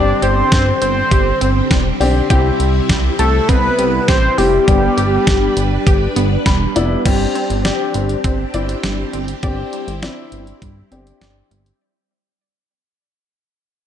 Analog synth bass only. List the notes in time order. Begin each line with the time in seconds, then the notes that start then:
Already playing: G1
0.22 G1
0.52 G1
0.82 G1
1.11 G1
1.41 G1
1.71 E1
2.01 B1
2.30 C2
2.60 C2
2.89 C2
3.19 C2
3.49 C2
3.79 C2
4.08 A1
4.38 F1
4.68 G1
4.98 G1
5.27 G1
5.57 G1
5.87 G1
6.16 G1
6.46 E1
6.76 F1
7.05 G1
7.50 G1
7.95 G1
8.24 G1
8.54 G1
8.84 G1
9.13 G1
9.43 G1
9.88 G1
10.32 G1
10.62 G1
10.92 G1
11.21 G1
11.51 G1